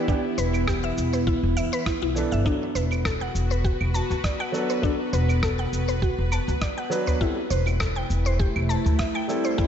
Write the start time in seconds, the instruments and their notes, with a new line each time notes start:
Already playing: synth drone E3 B3 E4
0.08 felt piano E3 B3 D4 G4, synth pluck D4, kick, cabasa
0.38 upright bass E1, synth pluck B4, cabasa
0.54 cabasa, claves
0.68 synth pluck G4, kick, cross-stick, cabasa
0.84 synth pluck E5
0.97 upright bass E1, cabasa
1.13 synth pluck B4, cabasa
1.27 synth pluck E4, kick, cabasa
1.43 upright bass E1
1.57 upright bass E2, synth pluck E5, cabasa, claves
1.73 synth pluck B4, cabasa
1.86 synth pluck E4, kick, cross-stick, cabasa
2.02 upright bass B1, synth pluck E4
2.15 felt piano E3 B3 D4 A4, cabasa
2.32 upright bass G1, synth pluck E5, cabasa
2.45 felt piano F#3 B3 D4 A4, synth pluck D4, synth drone F#4 B4, kick, cabasa
2.75 upright bass E1, synth pluck B4, cabasa
2.92 cabasa, claves
3.05 synth pluck A4, kick, cross-stick, cabasa
3.21 synth pluck F#5
3.35 upright bass E1, cabasa
3.51 synth pluck B4, cabasa
3.65 synth pluck F#4, kick, cabasa
3.81 upright bass E1, claves
3.94 synth pluck A5, cabasa
4.10 upright bass D2, udu, cabasa
4.24 synth pluck D5, kick, cross-stick, cabasa
4.40 synth pluck F#5, claves
4.52 felt piano F#3 B3 D4 A4, cabasa
4.70 synth pluck B4, cabasa
4.82 felt piano F#3 B3 D4 A4, synth pluck D4, kick, cabasa
5.13 upright bass E1, synth pluck B4, cabasa
5.29 cabasa, claves
5.43 synth pluck A4, kick, cross-stick, cabasa
5.59 synth pluck F#5
5.73 upright bass E1, cabasa
5.89 synth pluck B4, cabasa
6.02 synth pluck F#4, kick, cabasa
6.18 upright bass E1
6.32 synth pluck A5, cabasa, claves
6.48 upright bass D2, cabasa
6.61 synth pluck D5, kick, cross-stick, cabasa
6.78 synth pluck F#5
6.90 felt piano F#3 B3 D4 B4, cabasa
7.07 synth pluck B4, udu, cabasa
7.20 felt piano G3 C4 E4 A4, synth drone A3 E4, synth pluck E4, kick, cabasa
7.50 upright bass E1, synth pluck C5, cabasa
7.67 cabasa, claves
7.80 synth pluck A4, kick, cross-stick, cabasa
7.96 synth pluck G5
8.10 upright bass E1, cabasa
8.26 synth pluck C5, cabasa
8.39 synth pluck G4, kick, cabasa
8.56 upright bass E1, claves
8.69 synth pluck A5, cabasa
8.86 upright bass D2, udu, cabasa
8.99 synth pluck E5, kick, cross-stick, cabasa
9.15 synth pluck G5, claves
9.28 felt piano G3 C4 E4 A4, cabasa
9.45 synth pluck C5, cabasa
9.57 felt piano G3 C4 E4 A4, synth pluck E4, kick, cabasa